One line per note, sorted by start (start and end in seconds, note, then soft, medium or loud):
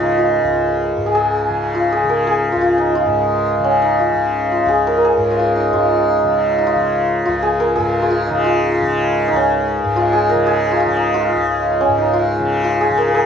0.00 0.43 C#2 medium
0.00 0.96 G#2 medium
0.00 1.50 C#3 medium
0.00 2.77 D#4 medium
0.00 0.17 F4 medium
0.00 1.06 G#4 medium
0.00 2.09 A#4 medium
0.00 0.62 C#5 loud
0.00 0.62 D#5 medium
0.00 0.65 F5 medium
0.18 1.74 F4 medium
0.44 2.55 C#2 medium
0.97 3.06 G#2 medium
1.06 1.14 G#4 medium
1.15 1.92 G#4 medium
1.50 2.03 C#3 medium
1.75 2.52 F4 medium
1.92 2.27 G#4 medium
2.03 3.59 C#3 medium
2.09 4.87 A#4 loud
2.27 4.68 G#4 loud
2.52 4.65 C#2 medium
2.52 2.61 F4 medium
2.61 2.95 F4 medium
2.78 3.81 D#4 medium
2.95 3.99 F4 medium
3.06 5.17 G#2 medium
3.59 4.13 C#3 medium
3.64 7.51 C#4 medium
3.82 5.55 D#4 medium
3.99 4.51 F4 medium
4.13 6.24 C#3 medium
4.52 5.30 F4 medium
4.65 7.27 C#2 medium
4.65 5.04 G#4 medium
4.87 4.97 A#4 loud
4.97 7.59 A#4 medium
5.05 7.42 G#4 loud
5.17 5.73 G#2 medium
5.30 5.39 F4 medium
5.39 5.73 F4 medium
5.56 6.58 D#4 medium
5.73 7.79 G#2 medium
5.73 6.66 F4 medium
6.24 6.76 C#3 medium
6.58 8.27 D#4 medium
6.67 7.25 F4 loud
6.76 8.30 C#3 medium
7.26 9.32 C#2 medium
7.26 8.02 F4 medium
7.43 7.75 G#4 loud
7.60 10.29 A#4 loud
7.76 9.84 G#2 medium
7.76 7.99 G#4 loud
8.00 8.10 F4 medium
8.00 10.12 G#4 medium
8.10 8.44 F4 medium
8.27 8.82 C#3 medium
8.27 9.28 D#4 medium
8.44 9.96 F4 medium
8.82 10.35 C#3 medium
9.28 10.96 D#4 medium
9.33 11.35 C#2 medium
9.33 11.80 C#4 loud
9.84 11.87 G#2 medium
9.96 10.71 F4 loud
10.13 10.46 G#4 loud
10.29 12.97 A#4 loud
10.35 10.86 C#3 medium
10.47 12.80 G#4 loud
10.71 10.80 F4 medium
10.80 11.14 F4 loud
10.86 12.39 C#3 medium
10.97 11.98 D#4 medium
11.14 12.13 F4 loud
11.36 13.26 C#2 medium
11.81 13.26 C#4 medium
11.88 13.26 G#2 medium
11.98 13.26 D#4 medium
12.13 12.63 F4 loud
12.39 12.90 C#3 medium
12.64 13.26 F4 medium
12.81 13.14 G#4 loud
12.90 13.26 C#3 medium
12.98 13.08 A#4 loud
13.08 13.26 A#4 medium
13.15 13.26 G#4 loud